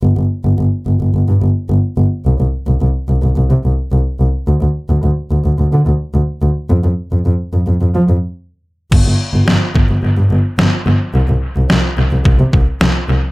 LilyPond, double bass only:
\new Staff \with { instrumentName = "Double bass" } { \clef bass \time 4/4 \key c \dorian \tempo 4 = 108 g,,16 g,,16 r16 g,,16 g,,16 r16 g,,16 g,,16 g,,16 g,16 g,,16 r16 g,,16 r16 g,,16 r16 | c,16 c,16 r16 c,16 c,16 r16 c,16 c,16 c,16 c16 c,16 r16 c,16 r16 c,16 r16 | d,16 d,16 r16 d,16 d,16 r16 d,16 d,16 d,16 d16 d,16 r16 d,16 r16 d,16 r16 | f,16 f,16 r16 f,16 f,16 r16 f,16 f,16 f,16 f16 f,16 r4 r16 |
g,,16 g,,16 r16 g,,16 g,,16 r16 g,,16 g,,16 g,,16 g,16 g,,16 r16 g,,16 r16 g,,16 r16 | c,16 c,16 r16 c,16 c,16 r16 c,16 c,16 c,16 c16 c,16 r16 c,16 r16 c,16 r16 | }